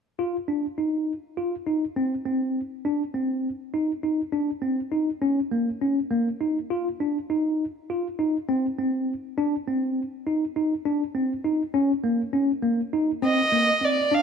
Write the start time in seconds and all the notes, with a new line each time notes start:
0.19 F4
0.48 D4
0.78 D#4
1.37 F4
1.66 D#4
1.96 C4
2.26 C4
2.85 D4
3.14 C4
3.74 D#4
4.03 D#4
4.32 D4
4.62 C4
4.92 D#4
5.22 C#4
5.51 A#3
5.81 C#4
6.11 A#3
6.41 D#4
6.70 F4
7.00 D4
7.30 D#4
7.90 F4
8.19 D#4
8.49 C4
8.79 C4
9.38 D4
9.68 C4
10.27 D#4
10.56 D#4
10.85 D4
11.15 C4
11.45 D#4
11.74 C#4
12.04 A#3
12.33 C#4
12.63 A#3
12.93 D#4
13.22 C4 D#5
13.52 A#3
13.81 C4 D5
14.11 D4 F5